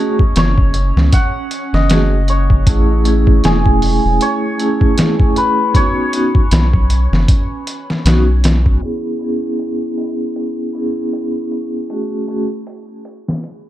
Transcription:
Already playing: A3 C#4 C#5 D#5
0.00 C#4 F#4 G#4
0.19 kick
0.36 F#1 C#5, snare, closed hi-hat
0.58 kick
0.74 closed hi-hat
0.96 C#2, snare
1.13 F#5, kick, closed hi-hat
1.51 closed hi-hat
1.73 F#1 D#5, snare
1.90 A3 C#4 F#4 G#4, snare, closed hi-hat
2.28 C#5, closed hi-hat
2.50 kick
2.67 A1 A3 C#4 E4 G#4, kick, closed hi-hat
3.04 A3 C#4 E4, closed hi-hat
3.09 G#4
3.27 kick
3.44 E1 G#4, snare, closed hi-hat
3.66 kick
3.82 open hi-hat
4.05 E1
4.21 C#5, closed hi-hat
4.58 A3 C#4 E4, closed hi-hat
4.62 G#4
4.81 kick
4.98 snare, closed hi-hat
5.20 kick
5.36 B4, closed hi-hat
5.75 B3 C#4 D#4 F#4 C#5, kick, closed hi-hat
6.13 B3 C#4 D#4 F#4, closed hi-hat
6.35 kick
6.51 B1, snare, closed hi-hat
6.73 kick
6.90 closed hi-hat
7.12 F#1, snare
7.28 kick, closed hi-hat
7.67 closed hi-hat
7.90 snare
8.05 B1 B3 C#4 D#4 F#4, snare, closed hi-hat
8.44 snare, closed hi-hat
8.66 kick
8.82 B3 C#4 E4 G#4, closed hi-hat
9.19 B3 C#4 E4, closed hi-hat
9.24 G#4
9.59 closed hi-hat
9.98 open hi-hat
10.36 closed hi-hat
10.73 B3 C#4 E4, closed hi-hat
10.78 G#4
11.13 closed hi-hat
11.52 closed hi-hat
11.90 A3 C#4 F#4 G#4, closed hi-hat
12.28 A3 C#4 F#4 G#4, closed hi-hat
12.67 closed hi-hat
13.05 closed hi-hat
13.28 snare
13.44 closed hi-hat

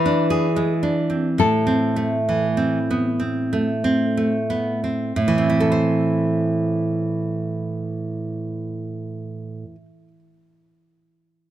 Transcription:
Already playing: E3 B4
0.06 D4
0.30 G#4
0.56 G#3
0.83 D4
1.10 C4
1.38 A2 A4
1.67 C4
1.96 A3
2.29 E3
2.57 C4
2.91 B3
3.20 C4
3.53 A3
3.84 C4
4.17 A3
4.50 B3
4.84 C4
5.16 A2
5.28 E3
5.38 C4
5.50 E4
5.60 A4
5.72 C5

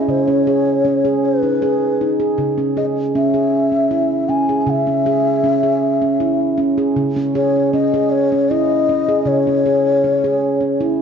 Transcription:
Already playing: G#4 D#5
0.08 C#3 C5
0.21 C#5
0.28 C#4
0.47 G#4
0.85 C#4
1.05 G#4
1.25 B4
1.43 D#4
1.62 G#4
2.01 D#4
2.20 G#4
2.38 C#3
2.58 C#4
2.77 G#4 D#5
3.15 C#4 E5
3.34 G#4
3.72 C#4
3.91 E4
4.29 C#4 G#5
4.49 G#4
4.62 G#5
4.67 C#3
4.71 E5
4.87 C#4
5.06 G#4
5.44 C#4
5.63 G#4
6.02 C#4
6.20 E4
6.58 C#4
6.78 G#4
6.96 C#3
7.16 C#4
7.35 G#4 C#5
7.73 C#4 D#5
7.94 G#4
8.11 C#5
8.32 C#4
8.50 E4 D#5
8.89 C#4
9.09 G#4
9.26 C#3 C#5
9.47 C#4
9.66 G#4
10.04 C#4
10.24 G#4
10.61 C#4
10.80 E4

